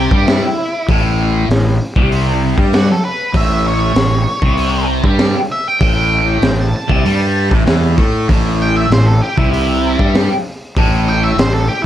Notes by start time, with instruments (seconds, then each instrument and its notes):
Already playing: distorted electric guitar C3, lead electric guitar G4
0.11 fingered electric bass G2, distorted electric guitar G3, kick
0.26 lead electric guitar E4, snare, open hi-hat
0.89 fingered electric bass A1, distorted electric guitar A2, kick, open hi-hat
1.49 fingered electric bass A1, distorted electric guitar A2, snare, open hi-hat
1.96 fingered electric bass C2, distorted electric guitar C3, kick
2.12 open hi-hat
2.58 fingered electric bass G2, distorted electric guitar G3, kick
2.73 lead electric guitar F#4, snare, open hi-hat
2.91 lead electric guitar A4
3.05 lead electric guitar B4
3.34 fingered electric bass A1, distorted electric guitar A2, lead electric guitar E5, kick, open hi-hat
3.68 lead electric guitar C#5
3.95 fingered electric bass A1, distorted electric guitar A2, snare, open hi-hat
4.42 fingered electric bass C2, distorted electric guitar C3, kick
4.57 open hi-hat
5.04 fingered electric bass G2, distorted electric guitar G3, kick
5.18 snare, open hi-hat
5.52 lead electric guitar E5
5.68 lead electric guitar G5
5.81 fingered electric bass A1, distorted electric guitar A2, kick, open hi-hat
6.42 fingered electric bass A1, distorted electric guitar A2, snare, open hi-hat
6.61 lead electric guitar A5
6.76 lead electric guitar A5
6.88 fingered electric bass C2, distorted electric guitar C3, kick
7.05 fingered electric bass G2, distorted electric guitar G3, open hi-hat
7.50 fingered electric bass A1, distorted electric guitar A2, kick
7.66 fingered electric bass E2, distorted electric guitar E3, snare, open hi-hat
7.97 fingered electric bass A2, distorted electric guitar A3, kick
8.28 fingered electric bass A1, distorted electric guitar A2, kick, open hi-hat
8.62 lead electric guitar G5
8.77 lead electric guitar E5
8.90 fingered electric bass A1, distorted electric guitar A2, lead electric guitar C5, snare, open hi-hat
9.07 lead electric guitar A4
9.22 lead electric guitar G4
9.37 fingered electric bass C2, distorted electric guitar C3, lead electric guitar E4, kick
9.51 lead electric guitar E4, open hi-hat
9.99 fingered electric bass G2, distorted electric guitar G3, kick
10.15 snare, open hi-hat
10.77 fingered electric bass A1, distorted electric guitar A2, kick, open hi-hat
11.09 lead electric guitar G5
11.23 lead electric guitar E5
11.37 fingered electric bass A1, distorted electric guitar A2, lead electric guitar C5, snare, open hi-hat
11.53 lead electric guitar A4
11.68 lead electric guitar G4
11.82 lead electric guitar E4